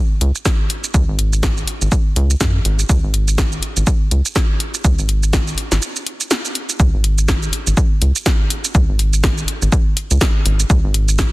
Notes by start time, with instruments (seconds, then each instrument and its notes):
0.21 analog synth bass C#2, closed hi-hat
0.35 shaker
0.46 kick, snare, shaker
0.70 closed hi-hat
0.84 shaker
0.94 analog synth bass C#2, kick, shaker
1.08 analog synth bass G#1
1.19 closed hi-hat
1.33 shaker
1.43 kick, snare, shaker
1.57 shaker
1.68 closed hi-hat
1.82 analog synth bass G#1, shaker
1.92 kick, shaker
2.16 analog synth bass C#2, closed hi-hat
2.30 shaker
2.41 analog synth bass F#2, kick, snare, shaker
2.65 analog synth bass G#1, closed hi-hat
2.79 shaker
2.89 analog synth bass C#2, kick, shaker
3.04 analog synth bass G#1
3.14 closed hi-hat
3.28 shaker
3.38 kick, snare, shaker
3.52 shaker
3.63 closed hi-hat
3.77 analog synth bass G#1, shaker
3.87 kick, shaker
4.11 analog synth bass C#2, closed hi-hat
4.25 shaker
4.36 kick, snare, shaker
4.60 closed hi-hat
4.74 shaker
4.85 analog synth bass C#2, kick, shaker
4.99 analog synth bass G#1, shaker
5.09 closed hi-hat
5.23 shaker
5.33 kick, snare, shaker
5.47 shaker
5.58 closed hi-hat
5.72 analog synth bass G#1, snare, shaker
5.82 shaker
5.96 shaker
6.07 closed hi-hat
6.21 shaker
6.31 snare, shaker
6.45 shaker
6.55 closed hi-hat
6.69 shaker
6.80 analog synth bass C#2, kick, shaker
6.94 analog synth bass G#1
7.04 closed hi-hat
7.18 shaker
7.28 kick, snare, shaker
7.43 shaker
7.53 closed hi-hat
7.67 analog synth bass G#1, shaker
7.77 kick, shaker
8.02 analog synth bass C#2, closed hi-hat
8.16 shaker
8.26 kick, snare, shaker
8.50 closed hi-hat
8.65 shaker
8.75 analog synth bass C#2, kick, shaker
8.89 analog synth bass G#1
8.99 closed hi-hat
9.13 shaker
9.24 kick, snare, shaker
9.38 shaker
9.48 closed hi-hat
9.62 analog synth bass G#1, shaker
9.72 kick, shaker
9.97 closed hi-hat
10.11 analog synth bass C#2, shaker
10.21 kick, snare, shaker
10.46 analog synth bass G#1, closed hi-hat
10.60 shaker
10.70 analog synth bass C#2, kick, shaker
10.84 analog synth bass G#1
10.94 closed hi-hat
11.08 shaker
11.19 kick, snare, shaker